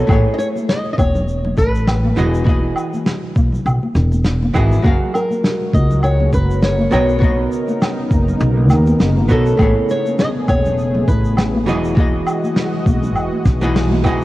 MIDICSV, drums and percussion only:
0, 0, Header, 1, 2, 480
1, 0, Start_track
1, 0, Tempo, 594059
1, 75, Time_signature, 4, 2, 24, 8
1, 11509, End_track
2, 0, Start_track
2, 0, Title_t, "Drums"
2, 74, Note_on_c, 9, 36, 122
2, 76, Note_on_c, 9, 63, 89
2, 77, Note_on_c, 9, 77, 78
2, 86, Note_on_c, 9, 82, 49
2, 155, Note_off_c, 9, 36, 0
2, 156, Note_off_c, 9, 63, 0
2, 158, Note_off_c, 9, 77, 0
2, 167, Note_off_c, 9, 82, 0
2, 318, Note_on_c, 9, 82, 98
2, 399, Note_off_c, 9, 82, 0
2, 451, Note_on_c, 9, 63, 66
2, 459, Note_on_c, 9, 82, 65
2, 532, Note_off_c, 9, 63, 0
2, 540, Note_off_c, 9, 82, 0
2, 558, Note_on_c, 9, 38, 93
2, 560, Note_on_c, 9, 82, 55
2, 639, Note_off_c, 9, 38, 0
2, 641, Note_off_c, 9, 82, 0
2, 793, Note_on_c, 9, 36, 106
2, 797, Note_on_c, 9, 63, 89
2, 799, Note_on_c, 9, 77, 69
2, 799, Note_on_c, 9, 82, 75
2, 874, Note_off_c, 9, 36, 0
2, 878, Note_off_c, 9, 63, 0
2, 880, Note_off_c, 9, 77, 0
2, 880, Note_off_c, 9, 82, 0
2, 930, Note_on_c, 9, 82, 64
2, 932, Note_on_c, 9, 64, 77
2, 1011, Note_off_c, 9, 82, 0
2, 1013, Note_off_c, 9, 64, 0
2, 1036, Note_on_c, 9, 82, 50
2, 1117, Note_off_c, 9, 82, 0
2, 1169, Note_on_c, 9, 64, 77
2, 1172, Note_on_c, 9, 63, 64
2, 1250, Note_off_c, 9, 64, 0
2, 1253, Note_off_c, 9, 63, 0
2, 1267, Note_on_c, 9, 62, 57
2, 1272, Note_on_c, 9, 82, 83
2, 1273, Note_on_c, 9, 36, 66
2, 1348, Note_off_c, 9, 62, 0
2, 1353, Note_off_c, 9, 82, 0
2, 1354, Note_off_c, 9, 36, 0
2, 1413, Note_on_c, 9, 82, 68
2, 1494, Note_off_c, 9, 82, 0
2, 1512, Note_on_c, 9, 38, 96
2, 1516, Note_on_c, 9, 77, 77
2, 1520, Note_on_c, 9, 82, 51
2, 1593, Note_off_c, 9, 38, 0
2, 1597, Note_off_c, 9, 77, 0
2, 1600, Note_off_c, 9, 82, 0
2, 1653, Note_on_c, 9, 63, 92
2, 1734, Note_off_c, 9, 63, 0
2, 1751, Note_on_c, 9, 64, 98
2, 1756, Note_on_c, 9, 82, 76
2, 1831, Note_off_c, 9, 64, 0
2, 1836, Note_off_c, 9, 82, 0
2, 1892, Note_on_c, 9, 82, 66
2, 1973, Note_off_c, 9, 82, 0
2, 1993, Note_on_c, 9, 36, 123
2, 1996, Note_on_c, 9, 63, 95
2, 2002, Note_on_c, 9, 82, 51
2, 2073, Note_off_c, 9, 36, 0
2, 2077, Note_off_c, 9, 63, 0
2, 2083, Note_off_c, 9, 82, 0
2, 2227, Note_on_c, 9, 77, 73
2, 2239, Note_on_c, 9, 82, 82
2, 2308, Note_off_c, 9, 77, 0
2, 2320, Note_off_c, 9, 82, 0
2, 2370, Note_on_c, 9, 82, 61
2, 2373, Note_on_c, 9, 63, 69
2, 2451, Note_off_c, 9, 82, 0
2, 2453, Note_off_c, 9, 63, 0
2, 2472, Note_on_c, 9, 38, 95
2, 2475, Note_on_c, 9, 82, 53
2, 2553, Note_off_c, 9, 38, 0
2, 2556, Note_off_c, 9, 82, 0
2, 2712, Note_on_c, 9, 82, 73
2, 2713, Note_on_c, 9, 36, 114
2, 2716, Note_on_c, 9, 63, 97
2, 2792, Note_off_c, 9, 82, 0
2, 2794, Note_off_c, 9, 36, 0
2, 2797, Note_off_c, 9, 63, 0
2, 2847, Note_on_c, 9, 64, 73
2, 2860, Note_on_c, 9, 82, 57
2, 2928, Note_off_c, 9, 64, 0
2, 2941, Note_off_c, 9, 82, 0
2, 2958, Note_on_c, 9, 82, 47
2, 2959, Note_on_c, 9, 77, 75
2, 3039, Note_off_c, 9, 77, 0
2, 3039, Note_off_c, 9, 82, 0
2, 3095, Note_on_c, 9, 63, 71
2, 3175, Note_off_c, 9, 63, 0
2, 3193, Note_on_c, 9, 82, 89
2, 3195, Note_on_c, 9, 38, 30
2, 3274, Note_off_c, 9, 82, 0
2, 3275, Note_off_c, 9, 38, 0
2, 3327, Note_on_c, 9, 62, 53
2, 3332, Note_on_c, 9, 82, 68
2, 3408, Note_off_c, 9, 62, 0
2, 3413, Note_off_c, 9, 82, 0
2, 3428, Note_on_c, 9, 82, 50
2, 3429, Note_on_c, 9, 38, 90
2, 3509, Note_off_c, 9, 82, 0
2, 3510, Note_off_c, 9, 38, 0
2, 3575, Note_on_c, 9, 63, 96
2, 3656, Note_off_c, 9, 63, 0
2, 3671, Note_on_c, 9, 77, 73
2, 3672, Note_on_c, 9, 82, 78
2, 3674, Note_on_c, 9, 36, 62
2, 3751, Note_off_c, 9, 77, 0
2, 3752, Note_off_c, 9, 82, 0
2, 3755, Note_off_c, 9, 36, 0
2, 3813, Note_on_c, 9, 82, 60
2, 3894, Note_off_c, 9, 82, 0
2, 3914, Note_on_c, 9, 36, 118
2, 3914, Note_on_c, 9, 63, 96
2, 3914, Note_on_c, 9, 82, 49
2, 3995, Note_off_c, 9, 36, 0
2, 3995, Note_off_c, 9, 63, 0
2, 3995, Note_off_c, 9, 82, 0
2, 4154, Note_on_c, 9, 77, 69
2, 4161, Note_on_c, 9, 82, 75
2, 4235, Note_off_c, 9, 77, 0
2, 4242, Note_off_c, 9, 82, 0
2, 4288, Note_on_c, 9, 63, 62
2, 4295, Note_on_c, 9, 82, 63
2, 4369, Note_off_c, 9, 63, 0
2, 4376, Note_off_c, 9, 82, 0
2, 4396, Note_on_c, 9, 38, 85
2, 4400, Note_on_c, 9, 82, 53
2, 4477, Note_off_c, 9, 38, 0
2, 4481, Note_off_c, 9, 82, 0
2, 4633, Note_on_c, 9, 36, 102
2, 4635, Note_on_c, 9, 63, 77
2, 4645, Note_on_c, 9, 82, 83
2, 4714, Note_off_c, 9, 36, 0
2, 4716, Note_off_c, 9, 63, 0
2, 4725, Note_off_c, 9, 82, 0
2, 4773, Note_on_c, 9, 64, 82
2, 4774, Note_on_c, 9, 82, 64
2, 4854, Note_off_c, 9, 64, 0
2, 4854, Note_off_c, 9, 82, 0
2, 4872, Note_on_c, 9, 77, 76
2, 4875, Note_on_c, 9, 82, 46
2, 4953, Note_off_c, 9, 77, 0
2, 4956, Note_off_c, 9, 82, 0
2, 5011, Note_on_c, 9, 63, 57
2, 5012, Note_on_c, 9, 64, 76
2, 5092, Note_off_c, 9, 63, 0
2, 5093, Note_off_c, 9, 64, 0
2, 5113, Note_on_c, 9, 36, 57
2, 5115, Note_on_c, 9, 82, 97
2, 5119, Note_on_c, 9, 62, 59
2, 5194, Note_off_c, 9, 36, 0
2, 5196, Note_off_c, 9, 82, 0
2, 5199, Note_off_c, 9, 62, 0
2, 5258, Note_on_c, 9, 82, 60
2, 5339, Note_off_c, 9, 82, 0
2, 5351, Note_on_c, 9, 82, 47
2, 5354, Note_on_c, 9, 38, 96
2, 5432, Note_off_c, 9, 82, 0
2, 5435, Note_off_c, 9, 38, 0
2, 5486, Note_on_c, 9, 63, 84
2, 5567, Note_off_c, 9, 63, 0
2, 5594, Note_on_c, 9, 82, 77
2, 5596, Note_on_c, 9, 77, 69
2, 5601, Note_on_c, 9, 64, 86
2, 5674, Note_off_c, 9, 82, 0
2, 5677, Note_off_c, 9, 77, 0
2, 5682, Note_off_c, 9, 64, 0
2, 5728, Note_on_c, 9, 82, 57
2, 5809, Note_off_c, 9, 82, 0
2, 5831, Note_on_c, 9, 63, 92
2, 5833, Note_on_c, 9, 36, 118
2, 5834, Note_on_c, 9, 82, 44
2, 5912, Note_off_c, 9, 63, 0
2, 5914, Note_off_c, 9, 36, 0
2, 5915, Note_off_c, 9, 82, 0
2, 6077, Note_on_c, 9, 82, 87
2, 6158, Note_off_c, 9, 82, 0
2, 6208, Note_on_c, 9, 63, 69
2, 6208, Note_on_c, 9, 82, 54
2, 6288, Note_off_c, 9, 63, 0
2, 6289, Note_off_c, 9, 82, 0
2, 6315, Note_on_c, 9, 82, 49
2, 6318, Note_on_c, 9, 77, 78
2, 6319, Note_on_c, 9, 38, 94
2, 6395, Note_off_c, 9, 82, 0
2, 6398, Note_off_c, 9, 77, 0
2, 6400, Note_off_c, 9, 38, 0
2, 6553, Note_on_c, 9, 36, 99
2, 6553, Note_on_c, 9, 82, 79
2, 6560, Note_on_c, 9, 63, 82
2, 6633, Note_off_c, 9, 36, 0
2, 6634, Note_off_c, 9, 82, 0
2, 6640, Note_off_c, 9, 63, 0
2, 6694, Note_on_c, 9, 64, 82
2, 6694, Note_on_c, 9, 82, 61
2, 6775, Note_off_c, 9, 64, 0
2, 6775, Note_off_c, 9, 82, 0
2, 6789, Note_on_c, 9, 82, 52
2, 6870, Note_off_c, 9, 82, 0
2, 6930, Note_on_c, 9, 63, 55
2, 7011, Note_off_c, 9, 63, 0
2, 7027, Note_on_c, 9, 82, 90
2, 7028, Note_on_c, 9, 38, 30
2, 7030, Note_on_c, 9, 77, 79
2, 7108, Note_off_c, 9, 38, 0
2, 7108, Note_off_c, 9, 82, 0
2, 7111, Note_off_c, 9, 77, 0
2, 7165, Note_on_c, 9, 82, 62
2, 7171, Note_on_c, 9, 62, 64
2, 7246, Note_off_c, 9, 82, 0
2, 7252, Note_off_c, 9, 62, 0
2, 7270, Note_on_c, 9, 82, 50
2, 7273, Note_on_c, 9, 38, 106
2, 7351, Note_off_c, 9, 82, 0
2, 7354, Note_off_c, 9, 38, 0
2, 7412, Note_on_c, 9, 63, 90
2, 7493, Note_off_c, 9, 63, 0
2, 7510, Note_on_c, 9, 82, 89
2, 7511, Note_on_c, 9, 36, 59
2, 7591, Note_off_c, 9, 82, 0
2, 7592, Note_off_c, 9, 36, 0
2, 7646, Note_on_c, 9, 82, 63
2, 7726, Note_off_c, 9, 82, 0
2, 7747, Note_on_c, 9, 77, 70
2, 7751, Note_on_c, 9, 36, 112
2, 7756, Note_on_c, 9, 63, 88
2, 7759, Note_on_c, 9, 82, 54
2, 7828, Note_off_c, 9, 77, 0
2, 7832, Note_off_c, 9, 36, 0
2, 7837, Note_off_c, 9, 63, 0
2, 7840, Note_off_c, 9, 82, 0
2, 7993, Note_on_c, 9, 82, 74
2, 8074, Note_off_c, 9, 82, 0
2, 8125, Note_on_c, 9, 63, 68
2, 8128, Note_on_c, 9, 82, 57
2, 8206, Note_off_c, 9, 63, 0
2, 8209, Note_off_c, 9, 82, 0
2, 8229, Note_on_c, 9, 82, 44
2, 8232, Note_on_c, 9, 38, 107
2, 8310, Note_off_c, 9, 82, 0
2, 8313, Note_off_c, 9, 38, 0
2, 8470, Note_on_c, 9, 77, 79
2, 8470, Note_on_c, 9, 82, 78
2, 8471, Note_on_c, 9, 36, 96
2, 8476, Note_on_c, 9, 63, 91
2, 8550, Note_off_c, 9, 77, 0
2, 8551, Note_off_c, 9, 82, 0
2, 8552, Note_off_c, 9, 36, 0
2, 8557, Note_off_c, 9, 63, 0
2, 8607, Note_on_c, 9, 82, 61
2, 8611, Note_on_c, 9, 64, 77
2, 8688, Note_off_c, 9, 82, 0
2, 8692, Note_off_c, 9, 64, 0
2, 8713, Note_on_c, 9, 82, 48
2, 8794, Note_off_c, 9, 82, 0
2, 8846, Note_on_c, 9, 64, 80
2, 8854, Note_on_c, 9, 63, 64
2, 8926, Note_off_c, 9, 64, 0
2, 8935, Note_off_c, 9, 63, 0
2, 8951, Note_on_c, 9, 36, 61
2, 8954, Note_on_c, 9, 62, 59
2, 8956, Note_on_c, 9, 82, 76
2, 9032, Note_off_c, 9, 36, 0
2, 9035, Note_off_c, 9, 62, 0
2, 9036, Note_off_c, 9, 82, 0
2, 9085, Note_on_c, 9, 82, 60
2, 9166, Note_off_c, 9, 82, 0
2, 9187, Note_on_c, 9, 77, 76
2, 9192, Note_on_c, 9, 82, 49
2, 9195, Note_on_c, 9, 38, 94
2, 9267, Note_off_c, 9, 77, 0
2, 9273, Note_off_c, 9, 82, 0
2, 9276, Note_off_c, 9, 38, 0
2, 9329, Note_on_c, 9, 63, 91
2, 9410, Note_off_c, 9, 63, 0
2, 9435, Note_on_c, 9, 82, 77
2, 9437, Note_on_c, 9, 64, 93
2, 9516, Note_off_c, 9, 82, 0
2, 9518, Note_off_c, 9, 64, 0
2, 9570, Note_on_c, 9, 82, 62
2, 9650, Note_off_c, 9, 82, 0
2, 9670, Note_on_c, 9, 82, 48
2, 9671, Note_on_c, 9, 36, 117
2, 9672, Note_on_c, 9, 63, 90
2, 9751, Note_off_c, 9, 82, 0
2, 9752, Note_off_c, 9, 36, 0
2, 9753, Note_off_c, 9, 63, 0
2, 9910, Note_on_c, 9, 77, 81
2, 9915, Note_on_c, 9, 82, 84
2, 9991, Note_off_c, 9, 77, 0
2, 9996, Note_off_c, 9, 82, 0
2, 10050, Note_on_c, 9, 63, 70
2, 10052, Note_on_c, 9, 82, 59
2, 10130, Note_off_c, 9, 63, 0
2, 10133, Note_off_c, 9, 82, 0
2, 10149, Note_on_c, 9, 38, 115
2, 10156, Note_on_c, 9, 82, 46
2, 10230, Note_off_c, 9, 38, 0
2, 10237, Note_off_c, 9, 82, 0
2, 10391, Note_on_c, 9, 36, 96
2, 10397, Note_on_c, 9, 63, 86
2, 10398, Note_on_c, 9, 82, 93
2, 10472, Note_off_c, 9, 36, 0
2, 10477, Note_off_c, 9, 63, 0
2, 10479, Note_off_c, 9, 82, 0
2, 10525, Note_on_c, 9, 64, 80
2, 10531, Note_on_c, 9, 82, 57
2, 10606, Note_off_c, 9, 64, 0
2, 10611, Note_off_c, 9, 82, 0
2, 10629, Note_on_c, 9, 82, 51
2, 10630, Note_on_c, 9, 77, 84
2, 10710, Note_off_c, 9, 82, 0
2, 10711, Note_off_c, 9, 77, 0
2, 10769, Note_on_c, 9, 63, 60
2, 10850, Note_off_c, 9, 63, 0
2, 10871, Note_on_c, 9, 36, 58
2, 10871, Note_on_c, 9, 82, 93
2, 10877, Note_on_c, 9, 38, 34
2, 10952, Note_off_c, 9, 36, 0
2, 10952, Note_off_c, 9, 82, 0
2, 10958, Note_off_c, 9, 38, 0
2, 11004, Note_on_c, 9, 82, 64
2, 11008, Note_on_c, 9, 62, 71
2, 11085, Note_off_c, 9, 82, 0
2, 11089, Note_off_c, 9, 62, 0
2, 11117, Note_on_c, 9, 38, 105
2, 11122, Note_on_c, 9, 82, 53
2, 11198, Note_off_c, 9, 38, 0
2, 11203, Note_off_c, 9, 82, 0
2, 11243, Note_on_c, 9, 63, 80
2, 11324, Note_off_c, 9, 63, 0
2, 11345, Note_on_c, 9, 62, 63
2, 11347, Note_on_c, 9, 77, 76
2, 11353, Note_on_c, 9, 36, 65
2, 11357, Note_on_c, 9, 82, 73
2, 11426, Note_off_c, 9, 62, 0
2, 11428, Note_off_c, 9, 77, 0
2, 11433, Note_off_c, 9, 36, 0
2, 11438, Note_off_c, 9, 82, 0
2, 11509, End_track
0, 0, End_of_file